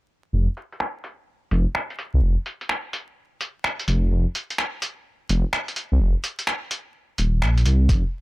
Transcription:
0.33 F1
0.57 closed hi-hat
0.72 closed hi-hat
0.80 finger snap
1.04 closed hi-hat
1.51 F1, closed hi-hat
1.75 finger snap
1.90 closed hi-hat
1.99 closed hi-hat
2.14 C2
2.22 F1
2.46 closed hi-hat
2.61 closed hi-hat
2.69 finger snap
2.93 closed hi-hat
3.41 closed hi-hat
3.64 finger snap
3.79 closed hi-hat
3.88 F1, closed hi-hat
4.11 F1
4.35 closed hi-hat
4.50 closed hi-hat
4.58 finger snap
4.82 closed hi-hat
5.29 F1, closed hi-hat
5.53 finger snap
5.68 closed hi-hat
5.76 closed hi-hat
5.92 C2
6.00 F1
6.24 closed hi-hat
6.39 closed hi-hat
6.47 finger snap
6.71 closed hi-hat
7.18 D#1, closed hi-hat
7.42 A#1, finger snap
7.58 closed hi-hat
7.65 C2, closed hi-hat
7.89 F1, kick, closed hi-hat

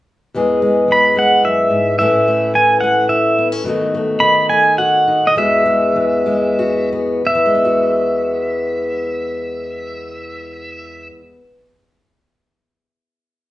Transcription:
0.34 E2 E3 G#3 B3 G#4
0.62 G#3
0.88 E3
0.92 B5
1.16 G#3 F#5
1.44 F#2 E5
1.70 G#2
1.99 A2 E3 A3 C#4 E4 E5
2.28 A3
2.55 E3 G#5
2.81 A3 F#5
3.09 E4 E5
3.38 B3
3.52 C#4
3.64 B2 D#3 A3 D#4 F#4
3.94 A3
4.20 D#3 B5
4.50 A3 G#5
4.78 F#4 F#5
5.08 D#4
5.27 D#5
5.35 E2 E3 G#3 B3 F#4 E5
5.66 G#3
5.96 E3
6.26 G#3
6.59 F#4
6.92 B3
7.25 E2 E5
7.35 E3
7.46 G#3
7.55 B3
7.65 F#4

